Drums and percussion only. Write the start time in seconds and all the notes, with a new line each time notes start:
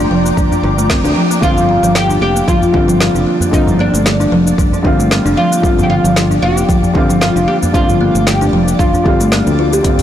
0.26 shaker
0.37 kick, djembe tone, shaker
0.52 djembe bass, shaker
0.64 djembe slap
0.78 djembe slap, shaker
0.90 kick, snare, shaker
1.04 djembe slap, djembe tone, shaker
1.30 djembe slap, shaker
1.42 kick, shaker
1.57 djembe tone, djembe bass, shaker
1.84 shaker
1.95 snare, shaker
2.10 djembe slap, djembe tone, shaker
2.36 shaker
2.48 kick, shaker
2.62 djembe bass, shaker
2.74 kick, djembe slap
2.89 djembe tone, shaker
3.01 snare, shaker
3.16 shaker
3.40 djembe bass, shaker
3.53 kick, shaker
3.67 djembe tone, djembe bass, shaker
3.95 shaker
4.06 snare, shaker
4.20 djembe slap, djembe tone, shaker
4.47 shaker
4.58 kick, djembe tone, shaker
4.72 djembe bass, shaker
4.85 kick, djembe slap
5.00 djembe slap, shaker
5.11 snare, shaker
5.26 djembe slap, djembe tone, shaker
5.53 shaker
5.63 kick, shaker
5.79 djembe tone, djembe bass, shaker
6.05 shaker
6.16 snare, shaker
6.31 djembe slap, djembe tone, shaker
6.57 shaker
6.69 kick, shaker
6.83 djembe bass, shaker
6.95 kick, djembe slap
7.10 djembe tone, shaker
7.21 snare, shaker
7.37 shaker
7.63 djembe bass, shaker
7.74 kick, shaker
7.89 djembe tone, djembe bass, shaker
8.15 shaker
8.27 snare, shaker
8.41 djembe slap, djembe tone, shaker
8.68 shaker
8.79 kick, djembe tone, shaker
8.93 djembe bass, shaker
9.06 kick, djembe slap
9.20 djembe slap, shaker
9.32 snare, shaker
9.47 djembe slap, djembe tone, shaker
9.73 shaker
9.84 kick, closed hi-hat, shaker
9.99 closed hi-hat, djembe tone, djembe bass, shaker